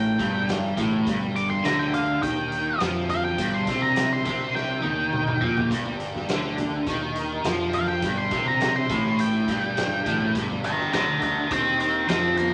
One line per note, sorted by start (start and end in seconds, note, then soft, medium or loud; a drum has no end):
0.00 0.16 A1 medium
0.00 0.18 A2 loud
0.00 12.54 G3 medium
0.00 12.54 D4 medium
0.00 12.54 G4 medium
0.00 12.54 A#4 medium
0.00 0.47 G5 medium
0.19 0.74 G1 medium
0.19 0.77 G2 loud
0.19 kick loud
0.19 closed hi-hat medium
0.48 snare loud
0.48 closed hi-hat medium
0.48 high conga medium
0.77 1.05 A1 medium
0.77 1.06 A2 loud
0.77 kick loud
0.77 closed hi-hat medium
0.77 low conga medium
0.92 high conga medium
1.07 1.61 G1 loud
1.07 1.64 G2 loud
1.07 kick loud
1.07 closed hi-hat medium
1.22 low conga medium
1.36 1.50 D6 loud
1.36 closed hi-hat medium
1.50 1.65 C6 medium
1.50 high conga medium
1.64 2.19 D2 loud
1.64 2.23 D3 loud
1.64 1.79 A#5 loud
1.64 snare loud
1.64 closed hi-hat medium
1.79 1.93 G5 medium
1.93 2.22 F5 medium
1.93 closed hi-hat medium
1.93 high conga medium
1.93 low conga medium
2.23 2.77 D#2 loud
2.23 2.80 D#3 loud
2.23 2.79 G5 medium
2.23 kick loud
2.23 closed hi-hat medium
2.52 closed hi-hat medium
2.80 3.35 F2 medium
2.80 3.38 F3 loud
2.80 snare loud
2.80 closed hi-hat medium
2.80 high conga medium
3.09 3.24 F5 medium
3.09 closed hi-hat medium
3.09 low conga medium
3.24 3.53 G5 loud
3.24 high conga medium
3.38 3.65 G1 loud
3.38 3.67 G2 loud
3.38 kick loud
3.38 closed hi-hat loud
3.54 3.82 C6 medium
3.67 4.22 C2 medium
3.67 4.25 C3 loud
3.67 kick loud
3.67 closed hi-hat medium
3.82 4.10 A#5 medium
3.82 high conga medium
3.96 snare loud
3.96 closed hi-hat loud
4.13 4.54 C6 medium
4.25 4.80 C2 medium
4.25 4.82 C3 loud
4.25 kick loud
4.25 closed hi-hat medium
4.25 low conga medium
4.55 5.68 G5 loud
4.55 snare medium
4.83 5.38 D#2 medium
4.83 5.40 D#3 medium
4.83 high tom medium
5.13 mid tom medium
5.13 high conga medium
5.28 mid tom medium
5.28 high conga medium
5.42 5.69 A#1 medium
5.42 5.70 A#2 loud
5.42 floor tom medium
5.42 low conga medium
5.57 floor tom medium
5.57 high conga medium
5.71 6.25 G1 medium
5.71 6.28 G2 loud
5.71 kick loud
5.71 closed hi-hat medium
5.86 low conga medium
6.00 closed hi-hat medium
6.15 snare soft
6.15 high conga medium
6.28 6.83 D2 medium
6.28 6.87 D3 loud
6.28 snare loud
6.28 closed hi-hat medium
6.58 closed hi-hat medium
6.58 high conga medium
6.58 low conga medium
6.86 7.41 D#2 medium
6.86 7.45 D#3 loud
6.86 kick loud
6.86 closed hi-hat medium
7.16 closed hi-hat medium
7.44 7.99 F2 medium
7.44 8.03 F3 loud
7.44 snare loud
7.44 closed hi-hat medium
7.44 high conga medium
7.73 7.88 F5 loud
7.73 closed hi-hat medium
7.73 low conga medium
7.87 8.17 G5 medium
7.87 snare soft
7.87 high conga medium
8.02 8.30 G1 medium
8.02 8.32 G2 loud
8.02 kick loud
8.02 closed hi-hat medium
8.16 8.46 C6 loud
8.16 low conga medium
8.31 8.86 C2 medium
8.31 8.90 C3 loud
8.31 kick loud
8.31 closed hi-hat medium
8.46 8.75 A#5 medium
8.46 high conga medium
8.61 snare loud
8.61 closed hi-hat medium
8.76 9.18 C6 loud
8.89 9.44 A1 medium
8.89 9.47 A2 loud
8.89 kick loud
8.89 closed hi-hat medium
8.89 low conga medium
9.06 snare soft
9.19 10.32 G5 loud
9.19 closed hi-hat medium
9.48 10.02 G1 medium
9.48 10.06 G2 loud
9.48 kick loud
9.48 closed hi-hat medium
9.77 snare loud
9.77 closed hi-hat medium
9.77 high conga medium
10.06 10.33 A1 medium
10.06 10.34 A2 loud
10.06 kick loud
10.06 closed hi-hat medium
10.06 low conga medium
10.21 high conga medium
10.35 10.89 G1 medium
10.35 10.93 G2 loud
10.35 kick loud
10.35 closed hi-hat medium
10.49 low conga medium
10.64 10.92 G5 loud
10.64 10.93 A#5 loud
10.64 closed hi-hat medium
10.79 snare soft
10.79 high conga medium
10.93 11.47 D2 medium
10.93 11.50 D3 loud
10.93 11.20 G5 medium
10.93 11.22 A#5 medium
10.93 snare loud
10.93 closed hi-hat medium
11.22 11.50 G5 medium
11.22 11.51 A#5 medium
11.22 closed hi-hat medium
11.22 high conga medium
11.22 low conga medium
11.51 12.05 D#2 loud
11.51 12.08 D#3 loud
11.51 11.79 G5 medium
11.51 11.79 C6 loud
11.51 kick loud
11.51 closed hi-hat medium
11.80 12.07 G5 medium
11.80 12.08 C6 medium
11.80 closed hi-hat medium
12.08 12.54 F2 loud
12.08 12.54 F3 loud
12.08 12.36 G5 medium
12.08 12.37 C6 medium
12.08 snare loud
12.08 closed hi-hat medium
12.08 high conga medium
12.37 12.54 A#5 medium
12.37 12.54 D6 loud
12.37 closed hi-hat medium
12.37 low conga medium